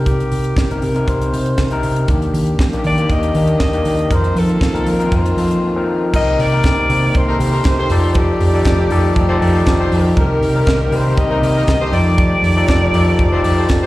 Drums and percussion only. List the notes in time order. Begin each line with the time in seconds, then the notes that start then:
0.06 kick, closed hi-hat
0.20 closed hi-hat
0.32 open hi-hat
0.44 closed hi-hat
0.57 kick, snare
0.71 closed hi-hat
0.82 open hi-hat
0.96 closed hi-hat
1.08 kick, closed hi-hat
1.21 closed hi-hat
1.34 open hi-hat
1.46 closed hi-hat
1.58 kick, snare
1.71 closed hi-hat
1.83 open hi-hat
1.96 closed hi-hat
2.08 kick, closed hi-hat
2.22 closed hi-hat
2.34 open hi-hat
2.47 closed hi-hat
2.59 kick, snare
2.73 closed hi-hat
2.84 open hi-hat
2.98 closed hi-hat
3.09 kick, closed hi-hat
3.23 closed hi-hat
3.35 open hi-hat
3.47 closed hi-hat
3.60 kick, snare
3.73 closed hi-hat
3.85 open hi-hat
3.99 closed hi-hat
4.11 kick, closed hi-hat
4.24 closed hi-hat
4.36 open hi-hat
4.49 closed hi-hat
4.61 kick, snare
4.75 closed hi-hat
4.86 open hi-hat
5.00 closed hi-hat
5.12 kick, closed hi-hat
5.26 closed hi-hat
5.38 open hi-hat
5.51 closed hi-hat
6.14 kick, crash
6.40 open hi-hat
6.64 kick, snare, closed hi-hat
6.90 open hi-hat
7.15 kick, closed hi-hat
7.40 open hi-hat
7.64 kick, snare, closed hi-hat
7.90 open hi-hat
8.14 kick, closed hi-hat
8.41 open hi-hat
8.65 kick, snare, closed hi-hat
8.90 open hi-hat
9.16 kick, closed hi-hat
9.42 open hi-hat
9.66 kick, snare, closed hi-hat
9.92 open hi-hat
10.17 kick, closed hi-hat
10.43 open hi-hat
10.67 kick, snare, closed hi-hat
10.92 open hi-hat
11.17 kick, closed hi-hat
11.43 open hi-hat
11.68 kick, snare, closed hi-hat
11.93 open hi-hat
12.18 kick, closed hi-hat
12.44 open hi-hat
12.68 kick, snare, closed hi-hat
12.94 open hi-hat
13.19 kick, closed hi-hat
13.44 open hi-hat
13.69 kick, snare, closed hi-hat